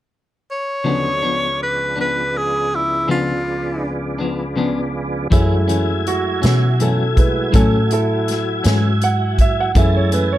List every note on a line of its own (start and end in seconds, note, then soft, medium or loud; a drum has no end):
0.51 1.58 C#5 medium
0.84 1.23 D2 soft
0.84 1.08 C#3 medium
0.84 1.08 F3 medium
0.84 1.23 F#3 soft
0.84 1.24 A3 soft
0.84 1.08 B3 medium
0.84 1.23 C4 soft
0.84 1.08 D4 medium
0.84 1.23 D#4 soft
1.22 5.28 C#2 soft
1.22 5.28 F3 soft
1.22 1.47 F3 soft
1.22 5.27 G#3 soft
1.22 5.28 B3 soft
1.22 1.46 B3 soft
1.22 5.27 D4 soft
1.22 1.45 D4 soft
1.63 1.97 B4 medium
1.96 2.20 F3 soft
1.96 2.20 B3 soft
1.96 2.19 D4 soft
2.00 2.39 B4 medium
2.37 2.76 G#4 medium
2.75 3.10 E4 medium
3.08 3.31 C#3 medium
3.08 3.31 F3 medium
3.08 3.32 B3 medium
3.08 3.32 D4 medium
3.08 3.90 F4 medium
4.19 4.43 F3 soft
4.19 4.43 B3 soft
4.19 4.42 D4 soft
4.56 4.79 C#3 medium
4.56 4.79 F3 medium
4.56 4.80 B3 medium
4.56 4.80 D4 medium
5.30 5.53 F#2 medium
5.30 6.40 F#2 medium
5.30 5.54 E3 medium
5.30 9.72 F#3 medium
5.30 6.39 G#3 soft
5.30 5.54 A3 medium
5.30 6.39 A3 soft
5.30 5.54 C#4 medium
5.30 9.72 E4 medium
5.30 6.39 E4 soft
5.30 9.72 G#5 medium
5.30 kick loud
5.30 closed hi-hat medium
5.68 5.92 E3 soft
5.68 5.91 A3 soft
5.68 5.91 C#4 soft
5.68 closed hi-hat medium
6.07 6.79 F#4 medium
6.07 closed hi-hat medium
6.42 7.51 B2 medium
6.42 6.66 E3 soft
6.42 6.65 A3 soft
6.42 6.65 C#4 soft
6.42 snare loud
6.42 closed hi-hat medium
6.79 7.02 F#2 medium
6.79 7.02 E3 medium
6.79 7.03 A3 medium
6.79 7.04 C#4 medium
6.79 7.17 A4 medium
6.79 closed hi-hat medium
7.16 7.50 G#3 soft
7.16 7.50 A3 soft
7.16 7.50 E4 soft
7.16 7.54 B4 medium
7.16 kick medium
7.16 closed hi-hat medium
7.52 7.75 F#2 medium
7.52 8.62 A2 medium
7.52 7.76 E3 medium
7.52 7.76 A3 medium
7.52 7.77 C#4 medium
7.52 7.91 A4 medium
7.52 kick loud
7.52 closed hi-hat medium
7.91 8.62 E4 medium
7.91 8.64 A4 medium
7.91 closed hi-hat medium
8.28 snare soft
8.28 closed hi-hat medium
8.64 9.73 G#2 medium
8.64 8.88 E3 soft
8.64 8.87 A3 soft
8.64 8.87 C#4 soft
8.64 snare loud
8.64 closed hi-hat medium
9.02 9.39 F#5 medium
9.02 closed hi-hat medium
9.39 9.57 E5 medium
9.39 kick medium
9.39 closed hi-hat medium
9.60 9.76 F#5 medium
9.75 9.97 F#2 medium
9.75 10.38 F#2 medium
9.75 9.98 E3 medium
9.75 10.25 G#3 soft
9.75 10.25 A3 soft
9.75 9.98 A3 medium
9.75 9.99 C#4 medium
9.75 10.38 E4 medium
9.75 10.25 E4 soft
9.75 9.94 E5 medium
9.75 10.38 G#5 medium
9.75 10.38 A5 medium
9.75 kick loud
9.75 closed hi-hat medium
9.97 10.13 C#5 medium
10.12 10.36 E3 soft
10.12 10.36 A3 soft
10.12 10.35 C#4 medium
10.12 10.30 B4 medium
10.12 closed hi-hat medium
10.32 10.38 C#5 medium